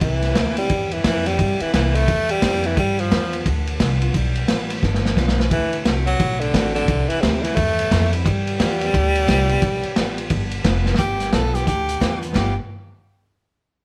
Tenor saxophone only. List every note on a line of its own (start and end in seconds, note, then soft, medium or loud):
0.02 0.54 E3 medium
0.58 0.95 G3 loud
0.93 1.05 E3 medium
1.05 1.29 E3 loud
1.27 1.63 G3 loud
1.62 1.74 E3 medium
1.74 1.97 E3 medium
1.95 2.32 A3 loud
2.31 2.68 G3 loud
2.67 2.75 E3 medium
2.76 3.02 G3 loud
2.76 2.80 A3 medium
3.00 3.47 F3 loud
5.51 5.83 E3 loud
6.06 6.42 F#3 loud
6.41 6.74 D3 medium
6.75 7.10 D3 loud
7.09 7.23 E3 loud
7.21 7.44 C3 medium
7.43 7.57 E3 loud
7.55 8.12 A3 loud
8.24 10.60 G3 loud
10.99 11.35 G4 loud
11.33 11.56 A4 loud
11.55 11.67 G4 loud
11.68 12.19 G4 loud
12.36 12.55 G4 medium